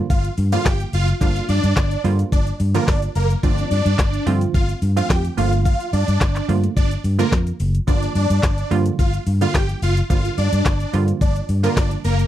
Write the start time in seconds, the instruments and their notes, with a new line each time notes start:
Already playing: synth pluck D3 F3 G3 A#3 F4
0.10 fingered electric bass G1, supersaw synth F4 F5, kick, shaker
0.25 closed hi-hat, shaker
0.38 fingered electric bass G2, open hi-hat, shaker
0.52 synth pluck D3 F3 G3 A#3 F4, supersaw synth F4 F5, closed hi-hat, shaker
0.65 fingered electric bass G1, supersaw synth G4 G5, kick, snare, clap, shaker
0.80 closed hi-hat, shaker
0.93 fingered electric bass F#1, supersaw synth F4 F5, open hi-hat, shaker
1.08 closed hi-hat, shaker
1.21 fingered electric bass G1, synth pluck D3 F3 G3 A#3 D4, supersaw synth F4 F5, kick, shaker
1.36 closed hi-hat, shaker
1.49 fingered electric bass G2, supersaw synth D4 D5, open hi-hat, shaker
1.64 fingered electric bass G2, closed hi-hat, shaker
1.77 fingered electric bass G1, kick, snare, clap, shaker
1.91 closed hi-hat, shaker
2.04 fingered electric bass G2, synth pluck D3 F3 G3 A#3 F4, open hi-hat, shaker
2.19 closed hi-hat, shaker
2.32 fingered electric bass G1, supersaw synth D4 D5, kick, shaker
2.47 closed hi-hat, shaker
2.60 fingered electric bass G2, open hi-hat, shaker
2.75 synth pluck D3 F3 G3 A#3 F4, supersaw synth A#3 A#4, closed hi-hat, shaker
2.88 fingered electric bass G1, supersaw synth D4 D5, kick, snare, clap, shaker
3.02 closed hi-hat, shaker
3.15 fingered electric bass F#1, supersaw synth A#3 A#4, open hi-hat, shaker
3.30 closed hi-hat, shaker
3.43 fingered electric bass G1, synth pluck D3 F3 A3 C4 F4, supersaw synth D4 D5, kick, shaker
3.58 closed hi-hat, shaker
3.71 fingered electric bass G2, supersaw synth D4 D5, open hi-hat, shaker
3.86 fingered electric bass G2, closed hi-hat, shaker
3.99 fingered electric bass G1, kick, snare, clap, shaker
4.14 closed hi-hat, shaker
4.26 fingered electric bass G2, synth pluck D3 F3 A3 C4 F4, open hi-hat, shaker
4.41 closed hi-hat, shaker
4.54 fingered electric bass G1, supersaw synth F4 F5, kick, shaker
4.69 closed hi-hat, shaker
4.82 fingered electric bass G2, open hi-hat, shaker
4.96 synth pluck D3 F3 A3 C4 F4, supersaw synth F4 F5, closed hi-hat, shaker
5.10 fingered electric bass F2, supersaw synth G4 G5, kick, snare, clap, shaker
5.25 closed hi-hat, shaker
5.37 fingered electric bass G1, synth pluck D3 F3 A3 A#3 F4, supersaw synth F4 F5, open hi-hat, shaker
5.53 closed hi-hat, shaker
5.65 supersaw synth F4 F5, kick, shaker
5.80 closed hi-hat, shaker
5.93 fingered electric bass G2, supersaw synth D4 D5, open hi-hat, shaker
6.08 fingered electric bass G2, closed hi-hat, shaker
6.21 fingered electric bass G1, kick, snare, clap, shaker
6.36 clap, closed hi-hat, shaker
6.48 fingered electric bass G2, synth pluck D3 F3 A3 A#3 F4, open hi-hat, shaker
6.64 closed hi-hat, shaker
6.76 fingered electric bass G1, supersaw synth D4 D5, kick, shaker
6.91 closed hi-hat, shaker
7.04 fingered electric bass G2, open hi-hat, shaker
7.19 synth pluck D3 F3 A3 A#3 F4, supersaw synth A#3 A#4, closed hi-hat, shaker
7.32 fingered electric bass F2, kick, snare, clap, shaker
7.47 closed hi-hat, shaker
7.60 fingered electric bass F#1, open hi-hat, shaker
7.75 closed hi-hat, shaker
7.87 fingered electric bass G1, synth pluck D3 F3 G3 A#3 F4, supersaw synth D4 D5, kick, shaker
8.03 closed hi-hat, shaker
8.15 fingered electric bass G2, supersaw synth D4 D5, open hi-hat, shaker
8.30 fingered electric bass G2, closed hi-hat, shaker
8.43 fingered electric bass G1, kick, snare, clap, shaker
8.58 closed hi-hat, shaker
8.71 fingered electric bass G2, synth pluck D3 F3 G3 A#3 F4, open hi-hat, shaker
8.86 closed hi-hat, shaker
8.99 fingered electric bass G1, supersaw synth F4 F5, kick, shaker
9.14 closed hi-hat, shaker
9.27 fingered electric bass G2, open hi-hat, shaker
9.41 synth pluck D3 F3 G3 A#3 F4, supersaw synth F4 F5, closed hi-hat, shaker
9.54 fingered electric bass G1, supersaw synth G4 G5, kick, snare, clap, shaker
9.69 closed hi-hat, shaker
9.82 fingered electric bass F#1, supersaw synth F4 F5, open hi-hat, shaker
9.97 closed hi-hat, shaker
10.10 fingered electric bass G1, synth pluck D3 F3 G3 A#3 F4, supersaw synth F4 F5, kick, shaker
10.25 closed hi-hat, shaker
10.38 fingered electric bass G2, supersaw synth D4 D5, open hi-hat, shaker
10.53 fingered electric bass G2, closed hi-hat, shaker
10.66 fingered electric bass G1, kick, snare, clap, shaker
10.80 closed hi-hat, shaker
10.93 fingered electric bass G2, synth pluck D3 F3 G3 A#3 F4, open hi-hat, shaker
11.08 closed hi-hat, shaker
11.21 fingered electric bass G1, supersaw synth D4 D5, kick, shaker
11.36 closed hi-hat, shaker
11.49 fingered electric bass G2, open hi-hat, shaker
11.63 synth pluck D3 F3 G3 A#3 F4, supersaw synth A#3 A#4, closed hi-hat, shaker
11.77 fingered electric bass G1, supersaw synth D4 D5, kick, snare, clap, shaker
11.91 closed hi-hat, shaker
12.05 fingered electric bass F#1, supersaw synth A#3 A#4, open hi-hat, shaker
12.19 closed hi-hat, shaker